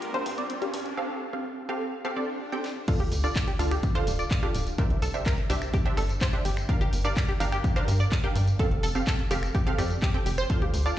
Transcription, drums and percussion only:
0.02 closed hi-hat medium
0.14 closed hi-hat soft
0.26 open hi-hat loud
0.38 closed hi-hat soft
0.50 closed hi-hat medium
0.62 closed hi-hat soft
0.74 open hi-hat loud
0.86 closed hi-hat soft
2.64 snare medium
2.88 kick loud
2.88 closed hi-hat medium
2.88 tambourine soft
2.88 crash loud
3.00 closed hi-hat soft
3.12 open hi-hat loud
3.12 tambourine medium
3.24 closed hi-hat soft
3.24 tambourine soft
3.36 kick loud
3.36 clap loud
3.36 closed hi-hat medium
3.48 closed hi-hat soft
3.59 open hi-hat loud
3.59 tambourine medium
3.71 finger snap medium
3.71 closed hi-hat soft
3.71 tambourine soft
3.83 kick loud
3.83 closed hi-hat medium
3.83 tambourine soft
3.95 finger snap medium
3.95 closed hi-hat soft
4.07 open hi-hat loud
4.07 tambourine medium
4.19 closed hi-hat soft
4.19 tambourine soft
4.31 kick loud
4.31 clap loud
4.31 closed hi-hat medium
4.31 tambourine soft
4.43 closed hi-hat soft
4.55 open hi-hat loud
4.55 tambourine medium
4.67 closed hi-hat soft
4.67 tambourine soft
4.78 kick loud
4.78 closed hi-hat medium
4.78 tambourine soft
4.90 closed hi-hat soft
5.02 open hi-hat loud
5.02 tambourine medium
5.14 closed hi-hat soft
5.14 tambourine soft
5.26 kick loud
5.26 clap loud
5.26 closed hi-hat medium
5.26 tambourine soft
5.38 closed hi-hat soft
5.50 open hi-hat loud
5.50 tambourine medium
5.62 finger snap medium
5.62 closed hi-hat soft
5.62 tambourine soft
5.74 kick loud
5.74 closed hi-hat medium
5.74 tambourine soft
5.86 closed hi-hat soft
5.97 finger snap medium
5.97 open hi-hat loud
5.97 tambourine medium
6.09 closed hi-hat soft
6.09 tambourine soft
6.21 kick loud
6.21 clap loud
6.21 closed hi-hat medium
6.21 tambourine soft
6.33 closed hi-hat soft
6.45 open hi-hat loud
6.45 tambourine medium
6.57 finger snap medium
6.57 closed hi-hat soft
6.57 tambourine soft
6.69 kick loud
6.69 closed hi-hat medium
6.69 tambourine soft
6.81 closed hi-hat soft
6.93 open hi-hat loud
6.93 tambourine medium
7.05 closed hi-hat soft
7.05 tambourine soft
7.17 kick loud
7.17 clap loud
7.17 closed hi-hat medium
7.17 tambourine soft
7.29 closed hi-hat soft
7.40 open hi-hat loud
7.40 tambourine medium
7.52 finger snap medium
7.52 closed hi-hat soft
7.52 tambourine soft
7.64 kick loud
7.64 closed hi-hat medium
7.64 tambourine soft
7.76 finger snap medium
7.76 closed hi-hat soft
7.88 open hi-hat loud
7.88 tambourine medium
8.00 closed hi-hat soft
8.00 tambourine soft
8.12 kick loud
8.12 clap loud
8.12 closed hi-hat medium
8.12 tambourine soft
8.24 closed hi-hat soft
8.36 open hi-hat loud
8.36 tambourine medium
8.48 closed hi-hat soft
8.48 tambourine soft
8.59 kick loud
8.59 closed hi-hat medium
8.59 tambourine soft
8.71 closed hi-hat soft
8.83 open hi-hat loud
8.83 tambourine medium
8.95 closed hi-hat soft
8.95 tambourine soft
9.07 kick loud
9.07 clap loud
9.07 closed hi-hat medium
9.19 closed hi-hat soft
9.31 open hi-hat loud
9.31 tambourine medium
9.43 finger snap medium
9.43 tambourine soft
9.55 kick loud
9.55 closed hi-hat medium
9.55 tambourine soft
9.67 closed hi-hat soft
9.78 finger snap medium
9.78 open hi-hat loud
9.78 tambourine medium
9.90 closed hi-hat soft
9.90 tambourine soft
10.02 kick loud
10.02 clap loud
10.02 closed hi-hat medium
10.14 closed hi-hat soft
10.26 open hi-hat loud
10.26 tambourine medium
10.38 finger snap medium
10.38 closed hi-hat soft
10.38 tambourine soft
10.50 kick loud
10.50 closed hi-hat medium
10.50 tambourine soft
10.62 closed hi-hat soft
10.74 open hi-hat loud
10.74 tambourine medium
10.86 closed hi-hat soft
10.86 tambourine soft

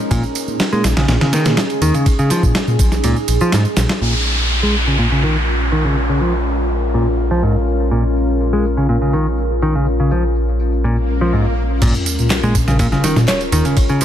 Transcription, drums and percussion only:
0.11 kick loud
0.11 ride medium
0.11 tambourine soft
0.23 tambourine soft
0.35 ride medium
0.35 tambourine medium
0.48 tambourine soft
0.60 snare loud
0.60 ride medium
0.60 tambourine soft
0.72 tambourine soft
0.84 snare loud
0.84 ride medium
0.84 tambourine medium
0.97 snare loud
0.97 ride medium
0.97 tambourine soft
1.08 snare loud
1.08 ride medium
1.08 tambourine soft
1.21 snare loud
1.21 ride medium
1.21 tambourine soft
1.33 snare loud
1.33 ride medium
1.33 tambourine medium
1.45 snare loud
1.45 ride medium
1.45 tambourine soft
1.57 snare loud
1.57 ride medium
1.57 tambourine soft
1.70 ride soft
1.70 tambourine soft
1.82 ride medium
1.82 tambourine medium
1.94 ride soft
1.94 tambourine soft
2.06 kick loud
2.06 ride medium
2.06 tambourine soft
2.19 tambourine soft
2.30 snare soft
2.30 ride medium
2.30 tambourine medium
2.43 kick medium
2.43 tambourine soft
2.55 snare loud
2.55 ride medium
2.55 tambourine soft
2.68 tambourine soft
2.79 kick medium
2.79 ride medium
2.79 tambourine medium
2.92 snare soft
2.92 tambourine soft
3.04 ride medium
3.04 tambourine soft
3.16 tambourine soft
3.28 ride medium
3.28 tambourine medium
3.41 tambourine soft
3.52 snare loud
3.52 ride medium
3.52 tambourine soft
3.65 tambourine soft
3.77 snare loud
3.77 ride medium
3.77 tambourine medium
3.89 snare loud
3.89 ride medium
3.89 tambourine soft
6.70 tambourine medium
6.94 tambourine soft
7.18 tambourine medium
7.31 tambourine soft
7.43 tambourine soft
7.55 tambourine soft
7.67 tambourine medium
7.80 tambourine soft
7.91 tambourine soft
8.04 tambourine soft
8.16 tambourine medium
8.29 tambourine soft
8.40 tambourine soft
8.53 tambourine soft
8.64 tambourine medium
8.77 tambourine soft
8.89 tambourine soft
9.02 tambourine soft
9.13 tambourine medium
9.26 tambourine soft
9.38 tambourine soft
9.50 tambourine soft
9.62 tambourine medium
9.74 tambourine soft
9.86 tambourine soft
9.99 tambourine soft
10.11 tambourine medium
10.24 tambourine soft
10.35 tambourine soft
10.48 tambourine soft
10.60 tambourine medium
10.72 tambourine soft
10.84 tambourine soft
10.97 tambourine soft
11.08 tambourine medium
11.21 tambourine soft
11.33 tambourine soft
11.45 tambourine soft
11.57 tambourine medium
11.70 tambourine soft
11.82 kick loud
11.82 crash medium
11.82 ride medium
11.82 tambourine soft
11.95 tambourine soft
12.06 ride medium
12.06 tambourine medium
12.19 tambourine soft
12.30 snare loud
12.30 clap loud
12.30 ride medium
12.30 tambourine soft
12.43 tambourine soft
12.55 kick medium
12.55 ride medium
12.55 tambourine medium
12.68 snare soft
12.68 tambourine soft
12.79 kick loud
12.79 ride medium
12.79 tambourine soft
12.92 snare soft
12.92 tambourine soft
13.04 snare medium
13.04 ride medium
13.04 tambourine medium
13.16 snare medium
13.16 tambourine soft
13.28 snare loud
13.28 clap loud
13.28 ride medium
13.28 tambourine soft
13.41 ride soft
13.41 tambourine soft
13.52 ride medium
13.52 tambourine medium
13.65 ride soft
13.65 tambourine soft
13.77 kick loud
13.77 ride medium
13.77 tambourine soft
13.89 tambourine soft
14.01 snare soft
14.01 ride medium
14.01 tambourine medium

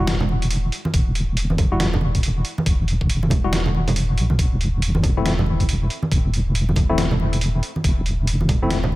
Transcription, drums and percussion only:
0.07 snare loud
0.07 closed hi-hat medium
0.21 low conga medium
0.29 high conga medium
0.42 closed hi-hat medium
0.51 closed hi-hat medium
0.72 closed hi-hat medium
0.85 high conga medium
0.94 kick loud
0.94 closed hi-hat medium
1.15 closed hi-hat medium
1.37 closed hi-hat medium
1.50 high conga medium
1.58 kick loud
1.58 closed hi-hat medium
1.58 low conga medium
1.80 snare loud
1.80 closed hi-hat medium
1.94 low conga medium
2.01 high conga medium
2.15 kick medium
2.15 closed hi-hat soft
2.23 closed hi-hat medium
2.45 closed hi-hat medium
2.58 high conga loud
2.66 kick loud
2.66 closed hi-hat medium
2.88 closed hi-hat soft
3.01 kick medium
3.10 closed hi-hat medium
3.23 high conga medium
3.30 kick loud
3.30 closed hi-hat medium
3.30 low conga medium
3.53 snare loud
3.53 closed hi-hat medium
3.66 low conga medium
3.75 high conga medium
3.87 closed hi-hat soft
3.87 low conga medium
3.96 closed hi-hat medium
4.18 closed hi-hat medium
4.30 high conga medium
4.39 kick loud
4.39 closed hi-hat medium
4.61 closed hi-hat soft
4.82 closed hi-hat medium
4.95 high conga medium
5.03 kick loud
5.03 closed hi-hat soft
5.03 low conga medium
5.26 snare loud
5.26 closed hi-hat medium
5.39 low conga medium
5.46 high conga medium
5.60 kick medium
5.60 closed hi-hat soft
5.69 closed hi-hat medium
5.90 closed hi-hat soft
6.03 high conga medium
6.12 kick loud
6.12 closed hi-hat medium
6.34 closed hi-hat medium
6.55 closed hi-hat medium
6.69 high conga medium
6.76 kick loud
6.76 closed hi-hat medium
6.76 low conga medium
6.98 snare loud
6.98 closed hi-hat medium
7.11 low conga medium
7.20 high conga medium
7.33 closed hi-hat soft
7.41 closed hi-hat medium
7.63 closed hi-hat soft
7.76 high conga medium
7.84 kick loud
7.84 closed hi-hat medium
8.06 closed hi-hat soft
8.27 closed hi-hat medium
8.41 high conga medium
8.49 kick loud
8.49 closed hi-hat medium
8.49 low conga medium
8.70 snare loud
8.70 closed hi-hat medium
8.84 low conga loud
8.92 high conga medium

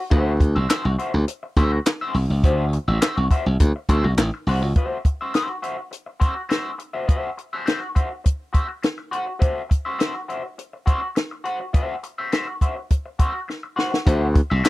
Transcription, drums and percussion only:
0.11 kick loud
0.11 closed hi-hat medium
0.40 kick loud
0.40 closed hi-hat medium
0.69 snare medium
0.69 clap medium
0.69 closed hi-hat loud
0.99 closed hi-hat medium
1.28 closed hi-hat loud
1.57 kick medium
1.57 closed hi-hat medium
1.86 snare loud
1.86 clap medium
1.86 closed hi-hat medium
2.15 open hi-hat medium
2.44 kick loud
2.44 closed hi-hat medium
2.73 closed hi-hat medium
3.01 snare loud
3.01 clap medium
3.01 closed hi-hat loud
3.31 kick medium
3.31 closed hi-hat medium
3.60 kick medium
3.60 closed hi-hat medium
3.89 kick medium
3.89 closed hi-hat medium
4.17 snare loud
4.17 clap medium
4.17 closed hi-hat loud
4.47 open hi-hat medium
4.76 kick loud
4.76 closed hi-hat medium
5.05 kick medium
5.05 closed hi-hat medium
5.34 snare medium
5.34 closed hi-hat medium
5.63 closed hi-hat medium
5.93 closed hi-hat medium
6.21 kick medium
6.21 closed hi-hat medium
6.50 snare medium
6.50 closed hi-hat medium
6.80 closed hi-hat medium
7.09 kick loud
7.09 closed hi-hat medium
7.38 closed hi-hat medium
7.67 snare medium
7.67 closed hi-hat medium
7.96 kick medium
7.96 closed hi-hat medium
8.26 kick medium
8.26 closed hi-hat medium
8.54 kick medium
8.54 closed hi-hat medium
8.83 snare loud
8.83 closed hi-hat medium
9.13 closed hi-hat medium
9.42 kick loud
9.42 closed hi-hat medium
9.71 kick medium
9.71 closed hi-hat medium
10.00 snare loud
10.00 closed hi-hat medium
10.30 closed hi-hat medium
10.59 closed hi-hat medium
10.87 kick medium
10.87 closed hi-hat medium
11.16 snare loud
11.16 closed hi-hat medium
11.45 closed hi-hat medium
11.74 kick loud
11.74 closed hi-hat medium
12.03 closed hi-hat medium
12.32 snare loud
12.32 closed hi-hat medium
12.61 kick medium
12.61 closed hi-hat medium
12.90 kick medium
12.90 closed hi-hat medium
13.19 kick medium
13.19 closed hi-hat medium
13.50 snare soft
13.79 snare medium
13.94 snare medium
14.07 kick loud
14.07 closed hi-hat medium
14.36 kick loud
14.36 closed hi-hat medium
14.64 snare loud
14.64 clap medium
14.64 closed hi-hat loud

